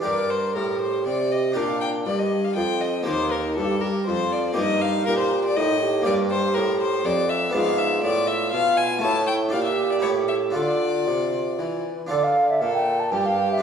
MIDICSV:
0, 0, Header, 1, 5, 480
1, 0, Start_track
1, 0, Key_signature, -2, "minor"
1, 0, Tempo, 502934
1, 51, Time_signature, 3, 2, 24, 8
1, 3889, Tempo, 497100
1, 5811, Key_signature, -1, "minor"
1, 9649, Tempo, 511509
1, 13013, End_track
2, 0, Start_track
2, 0, Title_t, "Violin"
2, 0, Program_c, 0, 40
2, 48, Note_on_c, 0, 74, 70
2, 289, Note_on_c, 0, 72, 67
2, 303, Note_off_c, 0, 74, 0
2, 526, Note_off_c, 0, 72, 0
2, 531, Note_on_c, 0, 70, 57
2, 770, Note_off_c, 0, 70, 0
2, 776, Note_on_c, 0, 72, 64
2, 1012, Note_off_c, 0, 72, 0
2, 1019, Note_on_c, 0, 74, 74
2, 1257, Note_on_c, 0, 75, 62
2, 1271, Note_off_c, 0, 74, 0
2, 1490, Note_on_c, 0, 77, 74
2, 1504, Note_off_c, 0, 75, 0
2, 1721, Note_off_c, 0, 77, 0
2, 1727, Note_on_c, 0, 79, 76
2, 1803, Note_off_c, 0, 79, 0
2, 1968, Note_on_c, 0, 74, 66
2, 2091, Note_on_c, 0, 75, 62
2, 2105, Note_off_c, 0, 74, 0
2, 2334, Note_on_c, 0, 77, 74
2, 2348, Note_off_c, 0, 75, 0
2, 2435, Note_off_c, 0, 77, 0
2, 2441, Note_on_c, 0, 79, 75
2, 2680, Note_on_c, 0, 75, 65
2, 2694, Note_off_c, 0, 79, 0
2, 2907, Note_off_c, 0, 75, 0
2, 2912, Note_on_c, 0, 72, 85
2, 3164, Note_on_c, 0, 70, 67
2, 3179, Note_off_c, 0, 72, 0
2, 3395, Note_off_c, 0, 70, 0
2, 3401, Note_on_c, 0, 69, 71
2, 3636, Note_on_c, 0, 70, 67
2, 3651, Note_off_c, 0, 69, 0
2, 3873, Note_off_c, 0, 70, 0
2, 3878, Note_on_c, 0, 72, 83
2, 4128, Note_on_c, 0, 74, 72
2, 4143, Note_off_c, 0, 72, 0
2, 4356, Note_off_c, 0, 74, 0
2, 4361, Note_on_c, 0, 75, 91
2, 4603, Note_on_c, 0, 77, 86
2, 4617, Note_off_c, 0, 75, 0
2, 4838, Note_off_c, 0, 77, 0
2, 4843, Note_on_c, 0, 70, 84
2, 4951, Note_off_c, 0, 70, 0
2, 4957, Note_on_c, 0, 72, 68
2, 5200, Note_off_c, 0, 72, 0
2, 5216, Note_on_c, 0, 74, 78
2, 5325, Note_on_c, 0, 75, 88
2, 5339, Note_off_c, 0, 74, 0
2, 5799, Note_off_c, 0, 75, 0
2, 5805, Note_on_c, 0, 74, 84
2, 5882, Note_off_c, 0, 74, 0
2, 6044, Note_on_c, 0, 72, 91
2, 6274, Note_on_c, 0, 70, 80
2, 6289, Note_off_c, 0, 72, 0
2, 6512, Note_off_c, 0, 70, 0
2, 6518, Note_on_c, 0, 72, 84
2, 6762, Note_on_c, 0, 74, 84
2, 6776, Note_off_c, 0, 72, 0
2, 6994, Note_on_c, 0, 76, 74
2, 7009, Note_off_c, 0, 74, 0
2, 7235, Note_off_c, 0, 76, 0
2, 7241, Note_on_c, 0, 77, 89
2, 7468, Note_on_c, 0, 76, 89
2, 7482, Note_off_c, 0, 77, 0
2, 7710, Note_off_c, 0, 76, 0
2, 7716, Note_on_c, 0, 74, 88
2, 7948, Note_on_c, 0, 76, 86
2, 7962, Note_off_c, 0, 74, 0
2, 8174, Note_off_c, 0, 76, 0
2, 8180, Note_on_c, 0, 77, 95
2, 8423, Note_on_c, 0, 80, 89
2, 8437, Note_off_c, 0, 77, 0
2, 8659, Note_off_c, 0, 80, 0
2, 8665, Note_on_c, 0, 81, 93
2, 8901, Note_off_c, 0, 81, 0
2, 8907, Note_on_c, 0, 79, 77
2, 8984, Note_off_c, 0, 79, 0
2, 9151, Note_on_c, 0, 77, 79
2, 9260, Note_off_c, 0, 77, 0
2, 9265, Note_on_c, 0, 76, 69
2, 9513, Note_off_c, 0, 76, 0
2, 9524, Note_on_c, 0, 74, 68
2, 9573, Note_off_c, 0, 74, 0
2, 9630, Note_on_c, 0, 73, 78
2, 9705, Note_off_c, 0, 73, 0
2, 9876, Note_on_c, 0, 76, 64
2, 9951, Note_off_c, 0, 76, 0
2, 10120, Note_on_c, 0, 74, 81
2, 11315, Note_off_c, 0, 74, 0
2, 12060, Note_on_c, 0, 69, 67
2, 12502, Note_off_c, 0, 69, 0
2, 12547, Note_on_c, 0, 67, 72
2, 13013, Note_off_c, 0, 67, 0
2, 13013, End_track
3, 0, Start_track
3, 0, Title_t, "Flute"
3, 0, Program_c, 1, 73
3, 47, Note_on_c, 1, 70, 60
3, 534, Note_on_c, 1, 67, 57
3, 549, Note_off_c, 1, 70, 0
3, 1492, Note_on_c, 1, 62, 51
3, 1506, Note_off_c, 1, 67, 0
3, 1972, Note_on_c, 1, 67, 51
3, 1987, Note_off_c, 1, 62, 0
3, 2438, Note_off_c, 1, 67, 0
3, 2444, Note_on_c, 1, 65, 59
3, 2918, Note_off_c, 1, 65, 0
3, 2928, Note_on_c, 1, 63, 62
3, 3410, Note_on_c, 1, 67, 58
3, 3424, Note_off_c, 1, 63, 0
3, 3889, Note_on_c, 1, 65, 65
3, 3904, Note_off_c, 1, 67, 0
3, 4366, Note_off_c, 1, 65, 0
3, 4372, Note_on_c, 1, 63, 65
3, 4842, Note_off_c, 1, 63, 0
3, 4847, Note_on_c, 1, 67, 64
3, 5331, Note_on_c, 1, 63, 63
3, 5345, Note_off_c, 1, 67, 0
3, 5560, Note_off_c, 1, 63, 0
3, 5566, Note_on_c, 1, 67, 67
3, 6943, Note_off_c, 1, 67, 0
3, 7238, Note_on_c, 1, 65, 73
3, 8641, Note_off_c, 1, 65, 0
3, 8680, Note_on_c, 1, 64, 64
3, 9160, Note_on_c, 1, 67, 75
3, 9175, Note_off_c, 1, 64, 0
3, 10132, Note_on_c, 1, 65, 59
3, 10146, Note_off_c, 1, 67, 0
3, 11346, Note_off_c, 1, 65, 0
3, 11585, Note_on_c, 1, 74, 85
3, 11710, Note_on_c, 1, 77, 75
3, 11724, Note_off_c, 1, 74, 0
3, 11946, Note_off_c, 1, 77, 0
3, 11955, Note_on_c, 1, 76, 75
3, 12071, Note_on_c, 1, 77, 82
3, 12085, Note_off_c, 1, 76, 0
3, 12180, Note_off_c, 1, 77, 0
3, 12185, Note_on_c, 1, 79, 79
3, 12424, Note_on_c, 1, 81, 73
3, 12438, Note_off_c, 1, 79, 0
3, 12538, Note_on_c, 1, 79, 80
3, 12552, Note_off_c, 1, 81, 0
3, 12667, Note_on_c, 1, 77, 74
3, 12681, Note_off_c, 1, 79, 0
3, 12897, Note_off_c, 1, 77, 0
3, 12909, Note_on_c, 1, 76, 74
3, 13013, Note_off_c, 1, 76, 0
3, 13013, End_track
4, 0, Start_track
4, 0, Title_t, "Harpsichord"
4, 0, Program_c, 2, 6
4, 2, Note_on_c, 2, 62, 35
4, 17, Note_on_c, 2, 67, 37
4, 30, Note_on_c, 2, 70, 37
4, 42, Note_on_c, 2, 43, 41
4, 493, Note_off_c, 2, 43, 0
4, 534, Note_on_c, 2, 45, 44
4, 978, Note_off_c, 2, 45, 0
4, 1011, Note_on_c, 2, 48, 46
4, 1434, Note_off_c, 2, 62, 0
4, 1442, Note_off_c, 2, 67, 0
4, 1448, Note_off_c, 2, 70, 0
4, 1450, Note_on_c, 2, 62, 40
4, 1455, Note_off_c, 2, 48, 0
4, 1462, Note_on_c, 2, 67, 36
4, 1479, Note_on_c, 2, 70, 39
4, 1491, Note_on_c, 2, 46, 45
4, 1933, Note_off_c, 2, 46, 0
4, 1970, Note_on_c, 2, 43, 43
4, 2413, Note_off_c, 2, 43, 0
4, 2449, Note_on_c, 2, 41, 50
4, 2871, Note_off_c, 2, 62, 0
4, 2877, Note_off_c, 2, 67, 0
4, 2885, Note_off_c, 2, 70, 0
4, 2889, Note_on_c, 2, 58, 44
4, 2892, Note_off_c, 2, 41, 0
4, 2900, Note_on_c, 2, 67, 41
4, 2917, Note_on_c, 2, 70, 39
4, 2929, Note_on_c, 2, 39, 42
4, 3372, Note_off_c, 2, 39, 0
4, 3418, Note_on_c, 2, 43, 51
4, 3839, Note_off_c, 2, 58, 0
4, 3854, Note_off_c, 2, 43, 0
4, 3893, Note_on_c, 2, 41, 50
4, 4316, Note_off_c, 2, 67, 0
4, 4324, Note_off_c, 2, 70, 0
4, 4326, Note_on_c, 2, 58, 43
4, 4334, Note_off_c, 2, 41, 0
4, 4337, Note_on_c, 2, 67, 42
4, 4352, Note_on_c, 2, 70, 44
4, 4368, Note_on_c, 2, 43, 48
4, 4812, Note_off_c, 2, 43, 0
4, 4856, Note_on_c, 2, 46, 56
4, 5296, Note_off_c, 2, 46, 0
4, 5331, Note_on_c, 2, 45, 60
4, 5750, Note_off_c, 2, 58, 0
4, 5756, Note_off_c, 2, 67, 0
4, 5763, Note_off_c, 2, 70, 0
4, 5765, Note_on_c, 2, 58, 48
4, 5772, Note_off_c, 2, 45, 0
4, 5780, Note_on_c, 2, 67, 46
4, 5794, Note_on_c, 2, 70, 47
4, 5806, Note_on_c, 2, 43, 51
4, 6246, Note_off_c, 2, 43, 0
4, 6291, Note_on_c, 2, 45, 57
4, 6725, Note_off_c, 2, 45, 0
4, 6761, Note_on_c, 2, 41, 57
4, 7179, Note_off_c, 2, 58, 0
4, 7186, Note_off_c, 2, 67, 0
4, 7193, Note_off_c, 2, 70, 0
4, 7196, Note_on_c, 2, 59, 46
4, 7201, Note_off_c, 2, 41, 0
4, 7209, Note_on_c, 2, 62, 47
4, 7223, Note_on_c, 2, 74, 44
4, 7241, Note_on_c, 2, 44, 48
4, 7681, Note_off_c, 2, 44, 0
4, 7715, Note_on_c, 2, 45, 58
4, 8159, Note_off_c, 2, 45, 0
4, 8191, Note_on_c, 2, 47, 55
4, 8620, Note_off_c, 2, 59, 0
4, 8627, Note_off_c, 2, 62, 0
4, 8632, Note_on_c, 2, 57, 50
4, 8634, Note_off_c, 2, 74, 0
4, 8638, Note_off_c, 2, 47, 0
4, 8647, Note_on_c, 2, 64, 50
4, 8660, Note_on_c, 2, 73, 43
4, 8676, Note_on_c, 2, 45, 56
4, 9116, Note_on_c, 2, 62, 47
4, 9123, Note_off_c, 2, 45, 0
4, 9125, Note_off_c, 2, 57, 0
4, 9130, Note_on_c, 2, 74, 50
4, 9132, Note_off_c, 2, 64, 0
4, 9139, Note_off_c, 2, 73, 0
4, 9159, Note_on_c, 2, 46, 48
4, 9600, Note_on_c, 2, 64, 43
4, 9608, Note_off_c, 2, 46, 0
4, 9610, Note_off_c, 2, 62, 0
4, 9612, Note_on_c, 2, 67, 42
4, 9617, Note_off_c, 2, 74, 0
4, 9629, Note_on_c, 2, 69, 42
4, 9644, Note_on_c, 2, 45, 44
4, 10084, Note_on_c, 2, 62, 36
4, 10091, Note_off_c, 2, 45, 0
4, 10092, Note_off_c, 2, 64, 0
4, 10098, Note_off_c, 2, 67, 0
4, 10098, Note_on_c, 2, 65, 40
4, 10102, Note_off_c, 2, 69, 0
4, 10113, Note_on_c, 2, 69, 39
4, 10126, Note_on_c, 2, 50, 39
4, 10579, Note_off_c, 2, 50, 0
4, 10615, Note_on_c, 2, 48, 43
4, 11064, Note_off_c, 2, 48, 0
4, 11103, Note_on_c, 2, 52, 41
4, 11525, Note_off_c, 2, 62, 0
4, 11532, Note_off_c, 2, 65, 0
4, 11540, Note_off_c, 2, 69, 0
4, 11549, Note_off_c, 2, 52, 0
4, 11550, Note_on_c, 2, 62, 43
4, 11560, Note_on_c, 2, 65, 45
4, 11576, Note_on_c, 2, 69, 40
4, 11588, Note_on_c, 2, 50, 53
4, 12026, Note_off_c, 2, 50, 0
4, 12067, Note_on_c, 2, 46, 57
4, 12502, Note_off_c, 2, 46, 0
4, 12540, Note_on_c, 2, 43, 55
4, 12953, Note_off_c, 2, 62, 0
4, 12958, Note_off_c, 2, 65, 0
4, 12966, Note_off_c, 2, 69, 0
4, 12968, Note_on_c, 2, 62, 47
4, 12973, Note_off_c, 2, 43, 0
4, 12984, Note_on_c, 2, 65, 43
4, 13013, Note_off_c, 2, 62, 0
4, 13013, Note_off_c, 2, 65, 0
4, 13013, End_track
5, 0, Start_track
5, 0, Title_t, "Bassoon"
5, 0, Program_c, 3, 70
5, 50, Note_on_c, 3, 43, 58
5, 534, Note_on_c, 3, 45, 47
5, 549, Note_off_c, 3, 43, 0
5, 1012, Note_off_c, 3, 45, 0
5, 1018, Note_on_c, 3, 48, 61
5, 1487, Note_off_c, 3, 48, 0
5, 1491, Note_on_c, 3, 46, 60
5, 1962, Note_off_c, 3, 46, 0
5, 1973, Note_on_c, 3, 43, 53
5, 2451, Note_on_c, 3, 41, 64
5, 2465, Note_off_c, 3, 43, 0
5, 2930, Note_on_c, 3, 39, 69
5, 2944, Note_off_c, 3, 41, 0
5, 3408, Note_on_c, 3, 43, 56
5, 3422, Note_off_c, 3, 39, 0
5, 3747, Note_off_c, 3, 43, 0
5, 3890, Note_on_c, 3, 41, 60
5, 4374, Note_on_c, 3, 43, 68
5, 4388, Note_off_c, 3, 41, 0
5, 4853, Note_off_c, 3, 43, 0
5, 4858, Note_on_c, 3, 46, 57
5, 5326, Note_off_c, 3, 46, 0
5, 5335, Note_on_c, 3, 45, 71
5, 5803, Note_off_c, 3, 45, 0
5, 5816, Note_on_c, 3, 43, 71
5, 6256, Note_off_c, 3, 43, 0
5, 6289, Note_on_c, 3, 45, 66
5, 6753, Note_off_c, 3, 45, 0
5, 6760, Note_on_c, 3, 41, 70
5, 7229, Note_off_c, 3, 41, 0
5, 7237, Note_on_c, 3, 44, 78
5, 7709, Note_off_c, 3, 44, 0
5, 7715, Note_on_c, 3, 45, 61
5, 8188, Note_off_c, 3, 45, 0
5, 8198, Note_on_c, 3, 47, 65
5, 8680, Note_on_c, 3, 45, 74
5, 8694, Note_off_c, 3, 47, 0
5, 9159, Note_on_c, 3, 46, 61
5, 9173, Note_off_c, 3, 45, 0
5, 9648, Note_on_c, 3, 45, 59
5, 9662, Note_off_c, 3, 46, 0
5, 10125, Note_off_c, 3, 45, 0
5, 10131, Note_on_c, 3, 50, 65
5, 10618, Note_on_c, 3, 48, 54
5, 10632, Note_off_c, 3, 50, 0
5, 11103, Note_on_c, 3, 52, 54
5, 11117, Note_off_c, 3, 48, 0
5, 11444, Note_off_c, 3, 52, 0
5, 11587, Note_on_c, 3, 50, 73
5, 12064, Note_on_c, 3, 46, 65
5, 12078, Note_off_c, 3, 50, 0
5, 12534, Note_off_c, 3, 46, 0
5, 12540, Note_on_c, 3, 43, 68
5, 13000, Note_off_c, 3, 43, 0
5, 13013, End_track
0, 0, End_of_file